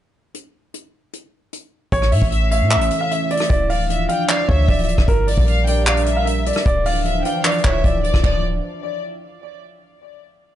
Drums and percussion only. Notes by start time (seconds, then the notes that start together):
0.34 closed hi-hat
0.74 closed hi-hat
1.13 closed hi-hat
1.53 closed hi-hat
1.92 kick, closed hi-hat
2.02 cross-stick
2.12 open hi-hat
2.22 kick
2.32 closed hi-hat
2.51 closed hi-hat
2.71 clap, closed hi-hat
2.81 closed hi-hat
2.90 closed hi-hat
3.11 closed hi-hat
3.30 closed hi-hat
3.37 cross-stick, closed hi-hat
3.44 closed hi-hat
3.50 kick, closed hi-hat
3.70 open hi-hat
3.90 closed hi-hat
4.09 closed hi-hat
4.29 clap, closed hi-hat
4.49 kick
4.68 kick, closed hi-hat
4.73 closed hi-hat
4.78 closed hi-hat
4.83 closed hi-hat
4.88 closed hi-hat
4.98 kick, cross-stick
5.08 kick, closed hi-hat
5.28 open hi-hat
5.38 kick
5.47 closed hi-hat
5.67 closed hi-hat
5.87 clap
5.97 closed hi-hat
6.06 closed hi-hat
6.27 closed hi-hat
6.46 closed hi-hat
6.53 cross-stick, closed hi-hat
6.59 closed hi-hat
6.66 kick, closed hi-hat
6.85 open hi-hat
7.05 closed hi-hat
7.25 closed hi-hat
7.45 clap, closed hi-hat
7.51 closed hi-hat
7.58 closed hi-hat
7.64 kick, clap
7.84 kick, closed hi-hat
8.04 closed hi-hat
8.14 kick, cross-stick
8.24 kick, floor tom, ride bell